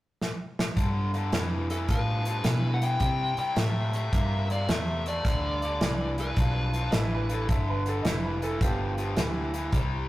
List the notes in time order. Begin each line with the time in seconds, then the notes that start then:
0.21 snare
0.59 snare
0.76 G2 D3, kick, closed hi-hat
1.14 G2 D3, closed hi-hat
1.32 F2 G2 E3, snare, closed hi-hat
1.70 G2 E3 A4, closed hi-hat
1.88 G2 A2 F3 B4, kick, closed hi-hat
2.25 G2 F3, closed hi-hat
2.44 G2 B2 E3, snare, closed hi-hat
2.74 F#5
2.82 G2 E3 G5, closed hi-hat
3.00 C3 G3, kick, closed hi-hat
3.37 C3 G3 G5, muted fingered electric bass stroke, closed hi-hat
3.56 A2 C3 A3 E5, snare, closed hi-hat
3.93 C3 A3 E5, closed hi-hat
4.13 G2 C3 A#3, kick, closed hi-hat
4.50 C3 A#3 D5, closed hi-hat
4.69 E2 C3 A3 E5, snare, closed hi-hat
5.06 C3 A3 D5, closed hi-hat
5.25 D2 G2 D3, kick, snare, closed hi-hat
5.62 G2 D3, closed hi-hat
5.81 C2 G2 E3, snare, closed hi-hat
6.18 G2 E3 B4, closed hi-hat
6.36 B1 G2 F3, kick, closed hi-hat
6.74 G2 F3, closed hi-hat
6.91 A1 G2 E3 D#5, snare, closed hi-hat
6.96 E5
7.15 B4
7.29 G2 E3 A4, closed hi-hat
7.49 G1 G2 D3 E5, kick, closed hi-hat
7.70 B4
7.86 G2 D3 A4, closed hi-hat
8.02 F1 G2 E3 D#5 E5, snare, closed hi-hat
8.25 B4
8.42 G2 E3 A4, closed hi-hat
8.61 G1 G2 F3 B3 G4, kick, closed hi-hat
8.98 G2 F3, closed hi-hat
9.17 D2 G2 E3, snare, closed hi-hat
9.54 G2 E3, closed hi-hat
9.72 C2 C3 G3, kick, closed hi-hat